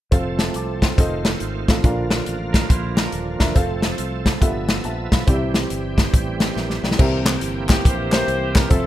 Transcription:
0.11 fingered electric bass F1, tonewheel organ F3 A3 C4 A4, upright piano C4 F4 A4 F5, kick, closed hi-hat
0.39 upright piano E5 A5, snare, closed hi-hat
0.54 fingered electric bass C2, upright piano A5 D6, closed hi-hat
0.82 upright piano G5 C6, kick, snare, closed hi-hat
0.97 fingered electric bass F1, tonewheel organ D#3 A3 C4 F4, upright piano C4 F4 A4 D#5, kick, closed hi-hat
1.25 snare, closed hi-hat
1.40 fingered electric bass G#1, closed hi-hat
1.68 fingered electric bass A1, upright piano C4 F4 A4 F5, kick, snare, closed hi-hat
1.83 fingered electric bass A#1, upright piano A#2 D4 F4 A#4 F5, tonewheel organ D3 F3 A#3, kick, closed hi-hat
2.10 snare, closed hi-hat
2.26 fingered electric bass A1, closed hi-hat
2.53 clean electric guitar D4 A#4, kick, snare, closed hi-hat
2.69 fingered electric bass A#1, clean electric guitar E4 C5, kick, closed hi-hat
2.96 clean electric guitar D4 A#4, snare, closed hi-hat
3.12 fingered electric bass D#1, closed hi-hat
3.39 fingered electric bass E1, upright piano D4 F4 A#4 E5, kick, snare, closed hi-hat
3.55 fingered electric bass F1, tonewheel organ A3 C4 A4, upright piano C4 F4 A4 F5, kick, closed hi-hat
3.82 snare, closed hi-hat
3.98 fingered electric bass C2, closed hi-hat
4.26 kick, snare, closed hi-hat
4.41 fingered electric bass G1, upright piano G2 B3 F4 A4 E5, tonewheel organ B3 E5, kick, closed hi-hat
4.69 snare, closed hi-hat
4.84 fingered electric bass A#1, upright piano E5 A5, closed hi-hat
5.12 fingered electric bass B1, upright piano F5 B5, kick, snare, closed hi-hat
5.27 fingered electric bass C2, upright piano C3 C4 E4 G4 D5, tonewheel organ E3 G3 C4 G4, kick, closed hi-hat
5.34 upright piano E5
5.54 snare, closed hi-hat
5.70 fingered electric bass G1, closed hi-hat
5.98 kick, snare, closed hi-hat
6.13 fingered electric bass A1, kick, closed hi-hat
6.40 snare, closed hi-hat
6.56 fingered electric bass A#1, upright piano A#4 E5, snare
6.70 snare
6.83 fingered electric bass B1, upright piano D5 G5, snare
6.91 snare
6.99 fingered electric bass C2, upright piano C3 C4 G4 A#4 E5, tonewheel organ E3 A#3 C4 G4, kick, crash
7.26 snare, clap, closed hi-hat
7.41 fingered electric bass G1, closed hi-hat
7.69 saxophone section G4, kick, snare, clap, closed hi-hat
7.85 fingered electric bass A#1, saxophone section E4 G4 C5, kick, closed hi-hat
8.11 upright piano C4 G4 A#4 C5, snare, clap, closed hi-hat
8.28 fingered electric bass C2, closed hi-hat
8.55 saxophone section A#4, kick, snare, clap, closed hi-hat
8.70 fingered electric bass F1, upright piano F3 C4 A4 E5, tonewheel organ F3 C4 A4, saxophone section C4 E4 A4, kick, closed hi-hat

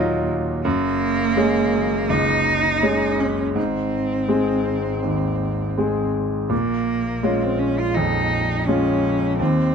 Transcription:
Already playing: double bass D#2, grand piano A#2 F#3 D#4 F4, cello A#3
0.64 double bass F#1, grand piano F#2, cello A#3
1.37 grand piano G#3 C#4 G#4
2.10 grand piano C#2, cello D#4
2.83 grand piano G#3 C#4 G#4
3.19 cello C#4
3.55 double bass G#1, grand piano G#2, cello C4
4.28 grand piano G#3 C4 G#4
5.03 grand piano D#2
5.78 grand piano G#3 C4 G#4
6.50 double bass A#1, grand piano A#2, cello A#3
7.23 grand piano G#3 C#4 F4
7.43 cello C4
7.59 cello C#4
7.79 cello F4
7.94 grand piano F2, cello D#4
8.67 grand piano G#3 C#4 F4, cello C#4
9.39 grand piano D#2, double bass D#2, cello C4

